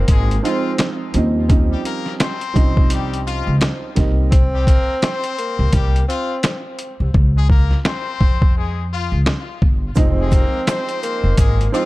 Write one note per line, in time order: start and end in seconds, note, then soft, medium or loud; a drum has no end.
0.00 0.32 F3 loud
0.00 0.32 G#3 medium
0.00 0.40 A#3 medium
0.00 0.32 C4 medium
0.00 0.33 D#4 loud
0.08 0.37 G#1 medium
0.08 0.37 G#3 medium
0.08 0.37 G#4 medium
0.08 kick medium
0.08 closed hi-hat loud
0.31 closed hi-hat medium
0.43 1.09 F3 loud
0.43 1.10 G#3 medium
0.43 0.97 C4 medium
0.43 1.10 C4 medium
0.43 1.10 D#4 loud
0.43 0.72 F4 medium
0.43 closed hi-hat medium
0.78 snare loud
0.78 closed hi-hat medium
1.14 1.72 D#2 loud
1.14 1.47 F3 medium
1.14 1.47 G3 medium
1.14 1.48 C4 medium
1.14 1.48 C#4 medium
1.14 1.48 D#4 medium
1.14 closed hi-hat medium
1.49 2.32 F3 medium
1.49 2.33 G3 medium
1.49 2.33 C4 medium
1.49 2.33 C#4 medium
1.49 2.33 D#4 loud
1.49 kick loud
1.49 closed hi-hat medium
1.70 1.82 G3 medium
1.70 1.82 G4 medium
1.85 2.13 A#3 medium
1.85 2.13 A#4 loud
1.85 closed hi-hat medium
2.06 snare soft
2.20 2.87 C4 medium
2.20 2.87 C5 loud
2.20 snare loud
2.20 snare medium
2.20 closed hi-hat medium
2.41 closed hi-hat medium
2.54 3.43 C2 medium
2.54 3.87 F3 medium
2.54 3.87 G3 medium
2.54 3.87 C4 medium
2.54 3.87 C#4 medium
2.54 3.88 D#4 loud
2.54 kick loud
2.54 closed hi-hat medium
2.77 kick loud
2.90 3.19 G3 medium
2.90 3.19 G4 loud
2.90 closed hi-hat loud
3.14 closed hi-hat medium
3.26 3.54 F4 loud
3.26 closed hi-hat medium
3.47 3.59 C#2 medium
3.61 snare loud
3.61 closed hi-hat medium
3.95 4.72 C2 loud
3.95 4.29 G3 medium
3.95 4.29 A#3 medium
3.95 4.30 C4 medium
3.95 4.30 D#4 medium
3.95 kick loud
3.95 snare soft
3.95 closed hi-hat medium
4.31 5.33 C4 loud
4.31 kick loud
4.31 closed hi-hat medium
4.53 4.65 G3 medium
4.53 4.65 G4 loud
4.67 4.95 A#3 medium
4.67 4.95 A#4 loud
4.67 kick loud
4.67 closed hi-hat medium
5.02 5.69 C4 medium
5.02 5.69 C5 loud
5.02 snare loud
5.02 snare medium
5.02 closed hi-hat loud
5.24 closed hi-hat medium
5.38 6.05 A#3 medium
5.38 closed hi-hat medium
5.59 5.71 C2 medium
5.73 6.02 C2 loud
5.73 6.01 G3 medium
5.73 6.01 G4 medium
5.73 kick medium
5.73 closed hi-hat loud
5.96 closed hi-hat medium
6.08 6.61 C4 medium
6.08 6.37 F4 loud
6.08 closed hi-hat medium
6.43 snare loud
6.43 snare medium
6.43 closed hi-hat medium
6.79 closed hi-hat medium
7.00 7.12 C2 medium
7.14 7.72 C#2 loud
7.14 kick loud
7.36 7.47 G#3 medium
7.36 7.47 G#4 loud
7.49 7.78 A#3 medium
7.49 7.78 A#4 loud
7.49 kick loud
7.71 snare soft
7.85 8.52 C4 loud
7.85 8.52 C5 loud
7.85 snare loud
7.85 snare medium
8.21 9.08 F2 medium
8.21 kick loud
8.42 kick loud
8.56 8.84 G#3 medium
8.56 8.84 G#4 medium
8.91 9.19 F4 medium
9.12 9.24 C#2 medium
9.26 snare loud
9.26 snare medium
9.62 9.91 G1 medium
9.62 kick loud
9.95 10.43 F1 loud
9.95 11.61 F3 loud
9.95 11.62 G#3 medium
9.95 11.62 C4 medium
9.95 10.99 C4 loud
9.95 11.62 D#4 loud
9.95 kick loud
9.95 closed hi-hat medium
9.95 maracas medium
10.18 10.29 G#3 medium
10.18 10.29 G#4 loud
10.32 10.60 A#3 medium
10.32 10.60 A#4 loud
10.32 kick loud
10.32 closed hi-hat medium
10.32 maracas medium
10.67 11.34 C4 medium
10.67 11.34 C5 loud
10.67 snare loud
10.67 snare medium
10.67 closed hi-hat loud
10.67 maracas medium
10.89 closed hi-hat medium
11.03 11.69 A#3 medium
11.03 closed hi-hat medium
11.03 maracas medium
11.24 11.35 F1 medium
11.37 11.67 G#1 medium
11.37 11.66 G#3 medium
11.37 11.66 G#4 loud
11.37 kick medium
11.37 closed hi-hat loud
11.37 maracas medium
11.61 closed hi-hat medium
11.72 11.85 F3 loud
11.72 11.85 G#3 medium
11.72 11.85 C4 medium
11.72 11.85 D#4 loud
11.72 11.85 F4 medium
11.72 closed hi-hat medium
11.72 high woodblock medium
11.72 maracas soft